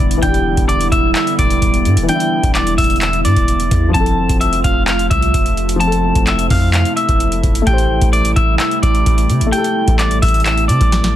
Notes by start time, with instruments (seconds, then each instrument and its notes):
Already playing: ambient pad D3 G3 B3 E4, grand piano E3 D4 E4, clean electric guitar D5
0.00 808-style bass E1
0.11 closed hi-hat
0.17 grand piano E3
0.22 808-style bass E1, grand piano D4, clean electric guitar G5, kick, closed hi-hat
0.29 grand piano G4
0.34 closed hi-hat
0.57 808-style bass E1, kick, closed hi-hat
0.68 clean electric guitar D5, closed hi-hat
0.81 closed hi-hat
0.92 808-style bass E1, clean electric guitar E5, kick, closed hi-hat
1.15 clean electric guitar E5, clap, closed hi-hat
1.27 closed hi-hat
1.39 808-style bass E1, clean electric guitar D5, kick, closed hi-hat
1.50 closed hi-hat
1.62 808-style bass E1, kick, closed hi-hat
1.74 closed hi-hat
1.85 808-style bass G2, closed hi-hat
1.97 808-style bass E1, closed hi-hat
2.03 grand piano E3
2.09 grand piano D4, clean electric guitar G5, closed hi-hat
2.14 grand piano E4
2.20 closed hi-hat
2.43 808-style bass E1, kick, closed hi-hat
2.55 clean electric guitar D5, clap, closed hi-hat
2.67 closed hi-hat
2.78 808-style bass E1, clean electric guitar E5, kick, closed hi-hat, open hi-hat
2.84 closed hi-hat
2.90 closed hi-hat
2.96 closed hi-hat
3.02 clean electric guitar E5, clap, closed hi-hat
3.13 closed hi-hat
3.25 808-style bass G2, clean electric guitar D5, closed hi-hat
3.36 808-style bass E1, kick, closed hi-hat
3.48 closed hi-hat
3.60 closed hi-hat
3.71 808-style bass E2, kick, closed hi-hat
3.89 grand piano F3
3.94 808-style bass F1, ambient pad C3 F3 A3 F4, grand piano C4, clean electric guitar A5, kick, closed hi-hat
4.00 grand piano A4
4.06 closed hi-hat
4.29 808-style bass F1, kick, closed hi-hat
4.41 clean electric guitar E5, closed hi-hat
4.53 closed hi-hat
4.64 808-style bass F1, clean electric guitar F5, kick, closed hi-hat
4.87 clean electric guitar F5, clap, closed hi-hat
4.99 closed hi-hat
5.10 808-style bass C2, clean electric guitar E5, kick, closed hi-hat
5.22 closed hi-hat
5.34 808-style bass F1, kick, closed hi-hat
5.46 closed hi-hat
5.57 closed hi-hat
5.69 closed hi-hat
5.76 grand piano F3
5.80 grand piano C4, ambient pad E4, clean electric guitar A5, closed hi-hat
5.87 grand piano A4
5.92 closed hi-hat
6.15 808-style bass F1, kick, closed hi-hat
6.27 clean electric guitar E5, clap, closed hi-hat
6.39 closed hi-hat
6.50 808-style bass F2, clean electric guitar F5, kick, open hi-hat
6.73 clean electric guitar F5, clap, closed hi-hat
6.85 closed hi-hat
6.96 clean electric guitar E5, closed hi-hat
7.09 808-style bass F1, kick, closed hi-hat
7.20 closed hi-hat
7.32 closed hi-hat
7.43 808-style bass F1, kick, closed hi-hat
7.55 closed hi-hat
7.62 grand piano A3
7.67 808-style bass A1, ambient pad C3 G3 A3, grand piano G4, clean electric guitar G5, kick, closed hi-hat
7.73 grand piano C5
7.78 closed hi-hat
8.02 808-style bass A1, kick, closed hi-hat
8.13 clean electric guitar D5, closed hi-hat
8.25 closed hi-hat
8.36 808-style bass A1, clean electric guitar E5, kick, closed hi-hat
8.60 clean electric guitar E5, clap, closed hi-hat
8.71 closed hi-hat
8.83 808-style bass A1, clean electric guitar D5, kick, closed hi-hat
8.95 closed hi-hat
9.06 808-style bass A1, kick, closed hi-hat
9.18 closed hi-hat
9.29 808-style bass C3, closed hi-hat
9.41 808-style bass A1, closed hi-hat
9.47 grand piano A3
9.52 grand piano G4, clean electric guitar G5, closed hi-hat
9.58 grand piano A4
9.64 closed hi-hat
9.88 808-style bass A1, kick, closed hi-hat
9.99 clean electric guitar D5, clap, closed hi-hat
10.11 closed hi-hat
10.22 808-style bass A1, clean electric guitar E5, kick, closed hi-hat, open hi-hat
10.28 closed hi-hat
10.34 closed hi-hat
10.40 closed hi-hat
10.45 clean electric guitar E5, clap, closed hi-hat
10.57 closed hi-hat
10.68 808-style bass C3, clean electric guitar D5, closed hi-hat
10.81 808-style bass A1, kick, closed hi-hat
10.92 snare, closed hi-hat
11.04 snare, closed hi-hat